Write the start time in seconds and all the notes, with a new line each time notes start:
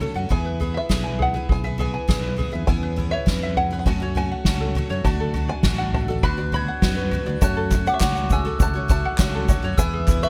Already playing: C#5 A5
0.00 F#3 A3 C#4 A4, floor tom
0.14 F#2 F#3 A3 C#4 A4 F#5
0.29 E2 E3 B3 E4 G#4 G#5, kick, floor tom
0.45 B4
0.60 E3 B3 E4 G#4, floor tom
0.74 E5
0.89 B1 E3 B3 E4 G#4, kick, snare, floor tom
1.04 G#5
1.19 G#4 F#5, floor tom
1.34 B3 E4 G#4 B4
1.49 B1 G#4 G#5, kick, floor tom
1.64 B3 E4 G#4 E5
1.78 E3 B3 E4 G#4 G#5, floor tom
1.94 G#5
2.08 B1 E3 B3 E4 G#4, kick, snare, floor tom
2.23 B4
2.36 E3 B3 E4 G#4, floor tom
2.52 E2 B3 E4 G#4 E5
2.67 E2 E3 B3 C#4 E4 G#4 G#5, kick, floor tom
2.83 B4
2.96 E3 B3 C#4 E4 G#4, floor tom
3.11 C#5 E5
3.26 F2 E3 B3 C#4 E4 G#4, kick, snare, floor tom
3.43 E5
3.56 E4 F#5, floor tom
3.71 B3 C#4 G#4 B4
3.79 F#5
3.86 F#2 C#3 F#3 A3 C#4 F#4 G#5, kick, floor tom
4.00 F#3 A3 C#4 F#4 C#5
4.15 F#3 A3 C#4 F#4 G#5, floor tom
4.32 F#5
4.45 C#2 F#2 C#3 F#3 A3 C#4 F#4, kick, snare, floor tom
4.60 A4
4.75 F#3 A3 C#4 F#4, floor tom
4.89 F#2 F#3 A3 C#4 F#4 C#5
5.04 D2 D3 F#3 A3 D4 F#4 A5, kick, floor tom
5.20 A4
5.34 F#3 A3 D4 F#4, floor tom
5.49 D5 G#5
5.63 A1 D3 F#3 A3 D4 F#4, kick, snare, floor tom
5.78 F#5
5.93 F#4 A5, floor tom
6.08 A3 D4 F#4 A4
6.23 D2 D3 F#3 B3 D4 F#4 B5 F#6, kick, floor tom
6.37 B3 D4 F#4 D5
6.52 F#3 B3 D4 F#4 B5 G#6, floor tom
6.68 F#5
6.82 F#2 D3 F#3 B3 D4 F#4, kick, snare, floor tom
6.96 B4
7.11 F#3 B3 D4 F#4, floor tom
7.26 D2 B3 D4 F#4 D5
7.41 F#1 F#2 C#3 F#3 A3 C#4 F#4 C#5 A5 F#6, kick, floor tom, shaker
7.57 A4
7.71 F#3 A3 C#4 F#4 C#5, kick, clap, floor tom, shaker
7.86 C#4 F#5 D6, shaker
7.94 E5 C#6
8.00 C#2 F#2 C#3 F#3 A3 C#4 F#4 C#5 F#5 D6, kick, snare, clap, floor tom, shaker
8.15 F#5, shaker
8.30 A3 C#4 F#4 G#4 G#5 E6, kick, floor tom, shaker
8.45 F#3 A3 C#4 F#4 A4
8.59 C#2 A3 C#4 F#4 C#5 A5 F#6, kick, floor tom, shaker
8.74 F#3 A3 C#4 F#4 C#5
8.88 F#3 A3 C#4 F#4 E5 A5 F#6, kick, floor tom, shaker
9.05 F#5
9.18 C#2 F#2 C#3 F#3 A3 C#4 F#4 C#5, kick, snare, clap, floor tom, shaker
9.35 A4
9.47 F#3 A3 C#4 F#4 C#5, kick, floor tom, shaker
9.52 F#4
9.63 F#2 F#3 A3 C#4 F#4 C#5
9.77 E2 E3 G#3 B3 E4 G#4 B4 G#5 E6, kick, floor tom, shaker
9.93 G#4
10.07 E3 G#3 B3 E4 G#4 B4, kick, clap, floor tom, shaker
10.23 B4 E5 C#6, shaker